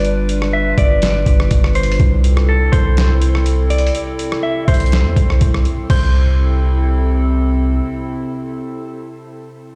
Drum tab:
CC |------------------------------------------------------------------------------------------------|------------------------------------------------------------------------------------------------|------------------------------------------------------------------------------------------------|x-----------------------------------------------------------------------------------------------|
HH |x-----------x-----------------------x-----------x-----------x-----------x-----------x---x---x---|x-----------x-----------------------x-----------x-----------x-----------x-----------x---x---x---|x-----------x-----------------------x--x--x--x--x-----------x-----------x-----------x-----------|------------------------------------------------------------------------------------------------|
SD |------------------r-----------------------------o-----------------r-----------r-----------------|------------------r-----------------------------o-----------------r-----------------------------|------------------r-----------------------------o-----------------r-----------r-----------------|------------------------------------------------------------------------------------------------|
BD |------------------------------------o-----------------------o-----------o-----------------------|o-----------------------------------o-----------------------------------------------------------|------------------------------------o-----------------------o-----------o-----------------------|o-----------------------------------------------------------------------------------------------|

CC |------------------------------------------------------------------------------------------------|
HH |------------------------------------------------------------------------------------------------|
SD |------------------------------------------------------------------------------------------------|
BD |------------------------------------------------------------------------------------------------|